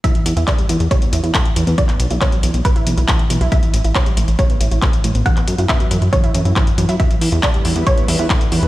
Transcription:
<<
  \new Staff \with { instrumentName = "Synth pluck" } { \time 4/4 \key e \dorian \tempo 4 = 138 e''8. r16 d''8. r16 cis''2 | d''8. r16 cis''8. r16 b'2 | e''8. r16 cis''8. r16 cis''2 | fis''8. r16 e''8. r16 cis''2 |
e''8. r16 d''8. r16 cis''2 | }
  \new Staff \with { instrumentName = "Analog synth pad" } { \time 4/4 \key e \dorian r1 | r1 | r1 | r1 |
<d g b e' b'>1 | }
  \new Staff \with { instrumentName = "Synth pluck" } { \time 4/4 \key e \dorian e16 e16 r16 e'16 a16 g16 e16 r16 g16 b16 e'16 e'16 a16 r16 e16 b16 | e,16 b16 r16 e'16 b16 fis16 e16 r16 e,16 e'16 e16 e'16 e16 r16 e16 e'16 | e16 e16 r16 e'16 a16 g16 e16 r16 g16 b16 e'16 e'16 a16 r16 e16 b16 | e,16 b16 r16 e'16 b16 fis16 e16 r16 e,16 e'16 e16 e'16 e16 r16 e16 e'16 |
e16 e16 r16 e'16 a16 g16 e16 r16 g16 b16 e'16 e'16 a16 r16 e16 b16 | }
  \new Staff \with { instrumentName = "Analog synth bass" } { \clef bass \time 4/4 \key e \dorian r8 e,16 e,16 r8 e,16 e,16 r8 e,16 e,16 r8 e,16 e,16 | r8 b,,16 b,,16 r8 b,,16 b,,16 r8 b,,16 b,,16 r8 b,,16 b,,16 | r8 a,,16 a,,16 r8 a,,16 a,,16 r8 a,,16 a,,16 r8 a,,16 a,,16 | r8 fis,16 fis,16 r8 fis,16 fis,16 r8 fis,16 fis,16 r8 fis,16 fis,16 |
r8 e,16 e,16 r8 e,16 e,16 r8 e,16 e,16 r8 e,16 e,16 | }
  \new DrumStaff \with { instrumentName = "Drums" } \drummode { \time 4/4 <hh bd>16 hh16 hh16 hh16 <hc hh bd>16 hh16 hh16 hh16 <hh bd>16 hh16 hh16 hh16 <hc hh bd>16 hh16 hh16 hh16 | <hh bd>16 <hc hh>16 hh16 hh16 <hc hh bd>16 hh16 hh16 hh16 <hh bd>16 hh16 hh16 hh16 <hc hh bd>16 hh16 hh16 hh16 | <hh bd>16 hh16 hh16 hh16 <hc hh bd>16 hh16 hh16 hh16 <hh bd>16 hh16 hh16 hh16 <hc hh bd>16 hh16 hh16 hh16 | <hh bd>16 <hc hh>16 hh16 hh16 <hc hh bd>16 hh16 hh16 hh16 <hh bd>16 hh16 hh16 hh16 <hc hh bd>16 hh16 hh16 hh16 |
<hh bd>16 hh16 hho16 hh16 <hc hh bd>16 hh16 hho16 hh16 <hh bd>16 hh16 hho16 hh16 <hc hh bd>16 hh16 hho16 hh16 | }
>>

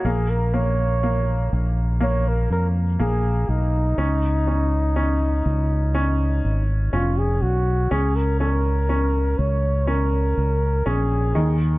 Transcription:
<<
  \new Staff \with { instrumentName = "Flugelhorn" } { \time 4/4 \key ais \phrygian \tempo 4 = 61 gis'16 ais'16 cis''4 r8 cis''16 ais'16 ais'8 gis'8 dis'8~ | dis'2~ dis'8. r16 eis'16 gis'16 fis'8 | gis'16 ais'16 ais'4 cis''8 ais'4 gis'8. r16 | }
  \new Staff \with { instrumentName = "Upright piano" } { \time 4/4 \key ais \phrygian ais8 ais8 ais4 ais4 ais4 | cis'8 cis'8 cis'4 cis'4 cis'4 | cis'8 cis'8 cis'4 cis'4 cis'8 dis8 | }
  \new Staff \with { instrumentName = "Fingered electric bass" } { \clef bass \time 4/4 \key ais \phrygian ais,,4. ais,,4 eis,8 ais,,8 b,,8 | cis,4. cis,4 gis,,8 eis,,8 b,,8 | cis,4. cis,4 cis,8 ais,,8 dis,8 | }
>>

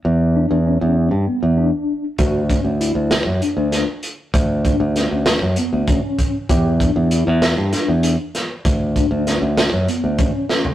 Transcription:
<<
  \new Staff \with { instrumentName = "Tine electric piano" } { \time 7/8 \key d \major \tempo 4 = 98 r8 d'8 cis'4 b8 d'4 | fis'8 cis'8 e'4 d'4 r8 | r8 d'8 cis'4 b8 cis'4 | g'8 d'8 e'4 d'4 r8 |
r8 d'8 cis'4 b8 cis'4 | }
  \new Staff \with { instrumentName = "Fingered electric bass" } { \clef bass \time 7/8 \key d \major e,8. e,8 e,8 g,16 r16 e,8 r8. | d,8. d,8 d,8 fis,16 r16 d,8 r8. | d,8. d,8 d,8 fis,16 r16 d,8 r8. | e,8. e,8 e,8 g,16 r16 e,8 r8. |
d,8. d,8 d,8 fis,16 r16 d,8 r8. | }
  \new DrumStaff \with { instrumentName = "Drums" } \drummode { \time 7/8 r4. r4 r4 | <hh bd>8 <hh bd>8 hh8 <hh sn>8 hh8 <hh sn>8 hh8 | <hh bd>8 <hh bd>8 <hh sn>8 <hh sn>8 hh8 <hh bd>8 <hh bd>8 | <hh bd>8 <hh bd>8 hh8 <hh sn>8 <hh sn>8 hh8 <hh sn>8 |
<hh bd>8 <hh bd>8 <hh sn>8 <hh sn>8 hh8 <hh bd>8 sn16 tomfh16 | }
>>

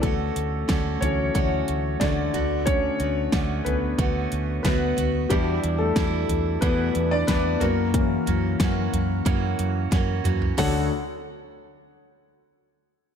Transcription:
<<
  \new Staff \with { instrumentName = "Grand piano" } { \time 4/4 \key d \major \tempo 4 = 91 <a a'>4. <cis' cis''>4 r8 <d d''>4 | cis''4 r8 <b b'>4. <b b'>4 | g'8. <a a'>4~ <a a'>16 <b b'>8. <d' d''>16 <b b'>8 <ais ais'>8~ | <ais ais'>2. r4 |
<d' a' cis'' fis''>8 r2. r8 | }
  \new Staff \with { instrumentName = "Grand piano" } { \time 4/4 \key d \major r4. <e fis a>2 r8 | <d a cis'>4. <d a cis'>8 r2 | <g d' fis'>2.~ <g d' fis'>8 r8 | <e ais cis'>8 r2. r8 |
d,8 r2. r8 | }
  \new Staff \with { instrumentName = "Steel-string acoustic guitar" } { \time 4/4 \key d \major <d a cis' fis'>4 <d a cis' fis'>4 <d a cis' fis'>4 <d a cis' fis'>8 <d a b fis'>8~ | <d a b fis'>8 <a b fis'>8 <d a b fis'>4 <d a b fis'>4 <d a b fis'>8 <a b fis'>8 | <e, b, e g d' e'>4 <e g d' e'>4 <e, b, e g d' e'>4 <e g d' e'>8 <fis, cis e ais cis' fis'>8~ | <fis, cis e ais cis' fis'>8 <e ais cis' fis'>8 <e ais cis' fis'>4 <fis, cis e ais cis' fis'>4 <e ais cis' fis'>8 <e ais cis' fis'>8 |
<d a cis' fis'>8 r2. r8 | }
  \new Staff \with { instrumentName = "Fingered electric bass" } { \clef bass \time 4/4 \key d \major d,8 d,8 d,8 d,8 d,8 d,8 d,8 d,8~ | d,8 d,8 d,8 d,8 d,8 d,8 d,8 d,8 | e,8 e,8 e,8 e,8 e,8 e,8 e,8 fis,8~ | fis,8 fis,8 fis,8 fis,8 fis,8 fis,8 fis,8 fis,8 |
d,8 r2. r8 | }
  \new DrumStaff \with { instrumentName = "Drums" } \drummode { \time 4/4 <hh bd>8 hh8 <hh bd sn>8 <hh tomfh>8 <hh bd>8 hh8 <hh bd sn>8 <hh tomfh>8 | <hh bd>8 hh8 <hh bd sn>8 <hh tomfh>8 <hh bd>8 hh8 <hh bd sn>8 <hh tomfh>8 | <hh bd>8 hh8 <hh bd sn>8 <hh tomfh>8 <hh bd>8 hh8 <hh bd sn>8 <hh tomfh>8 | <hh bd>8 <hh tomfh>8 <hh bd sn>8 <hh tomfh>8 <hh bd>8 hh8 <hh bd sn>8 <hh toml>16 tomfh16 |
<hho bd sn>4 r4 r4 r4 | }
>>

